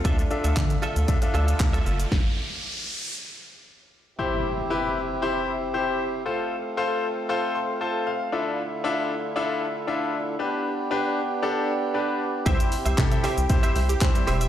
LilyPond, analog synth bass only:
\new Staff \with { instrumentName = "Analog synth bass" } { \clef bass \time 4/4 \key c \major \tempo 4 = 116 d,8 r16 d,16 d8 r16 d,16 r8 d,8 d,8 fis,,8 | r1 | r1 | r1 |
r1 | r1 | c,16 r8 c,16 c8 r16 c,16 r8 c,8 r8 e,,8 | }